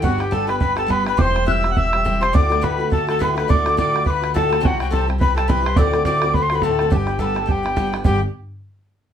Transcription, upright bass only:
X:1
M:4/4
L:1/8
Q:"Swing" 1/4=210
K:G
V:1 name="Upright bass" clef=bass
G,,,8 | E,,,8 | D,,8 | D,,8 |
C,,8 | D,,8 | G,,,8 | G,,, z6 z |]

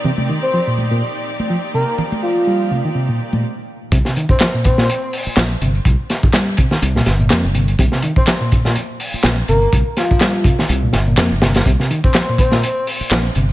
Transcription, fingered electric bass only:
X:1
M:4/4
L:1/16
Q:"Swing 16ths" 1/4=124
K:Cm
V:1 name="Fingered electric bass" clef=bass
z16 | z16 | C,, z8 z3 B,,, z G,,, z | C,, z6 z C,, z G,,,2 F,, G,,,2 z |
C,, z8 z3 B,,, z G,,, z | C,, z6 z C,, z G,,,2 F,, G,,,2 z | C,, z8 z3 B,,, z G,,, z |]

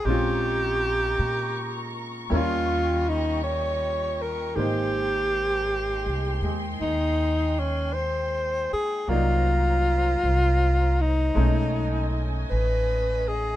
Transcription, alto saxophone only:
X:1
M:4/4
L:1/16
Q:"Swing" 1/4=53
K:Ab
V:1 name="Alto saxophone"
G6- G z F2 E2 d2 B2 | G6- G z E2 D2 c2 A2 | F6 E4- E z =B2 ^G2 |]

